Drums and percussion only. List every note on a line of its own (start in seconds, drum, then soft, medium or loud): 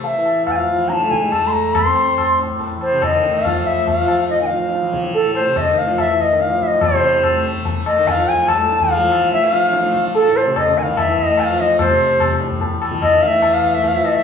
0.04 tabla tin medium
0.26 tabla na medium
0.47 tabla na medium
0.47 tabla ge medium
0.90 tabla te medium
1.00 tabla te medium
1.11 tabla ke medium
1.22 tabla te medium
1.32 tabla na medium
1.32 tabla ge medium
1.53 tabla ge medium
1.75 tabla na loud
1.75 tabla ge medium
2.18 tabla na medium
2.18 tabla ge medium
2.40 tabla te medium
2.50 tabla ge soft
2.60 tabla tin medium
2.60 tabla ge medium
2.81 tabla na medium
3.02 tabla na medium
3.02 tabla ge medium
3.23 tabla te medium
3.45 tabla na medium
3.45 tabla ge medium
3.66 tabla ge medium
3.87 tabla tin medium
3.87 tabla ge medium
4.08 tabla na medium
4.29 tabla te medium
4.51 tabla te medium
4.72 tabla te medium
4.83 tabla te medium
4.94 tabla ke medium
5.04 tabla te medium
5.14 tabla tin medium
5.35 tabla na medium
5.56 tabla na medium
5.56 tabla ge medium
5.98 tabla na medium
5.98 tabla ge medium
6.19 tabla ge medium
6.40 tabla te medium
6.50 tabla te medium
6.61 tabla ke medium
6.72 tabla te medium
6.81 tabla na loud
6.81 tabla ge loud
7.23 tabla na medium
7.23 tabla ge medium
7.44 tabla te medium
7.55 tabla ge medium
7.65 tabla tin medium
7.65 tabla ge medium
7.86 tabla na medium
8.07 tabla na medium
8.07 tabla ge medium
8.28 tabla ge medium
8.48 tabla na medium
8.48 tabla ge medium
8.70 tabla te medium
8.80 tabla ge medium
8.91 tabla tin medium
8.91 tabla ge medium
9.12 tabla na medium
9.22 tabla ke medium
9.32 tabla te medium
9.53 tabla te medium
9.73 tabla te medium
9.84 tabla te medium
9.94 tabla ke medium
10.05 tabla te medium
10.15 tabla tin medium
10.35 tabla na medium
10.56 tabla na medium
10.56 tabla ge medium
10.77 tabla te medium
10.87 tabla ge medium
10.97 tabla na medium
10.97 tabla ge medium
11.18 tabla ge medium
11.38 tabla na medium
11.38 tabla ge medium
11.58 tabla te medium
11.79 tabla na loud
11.79 tabla ge loud
12.20 tabla na medium
12.20 tabla ge medium
12.41 tabla te medium
12.51 tabla ge medium
12.61 tabla tin medium
12.61 tabla ge medium
12.82 tabla na medium
12.92 tabla ke medium
13.02 tabla na medium
13.02 tabla ge medium
13.23 tabla te medium
13.42 tabla na medium
13.42 tabla ge medium
13.63 tabla ge medium
13.84 tabla tin medium
13.84 tabla ge medium
14.04 tabla na medium
14.14 tabla ke medium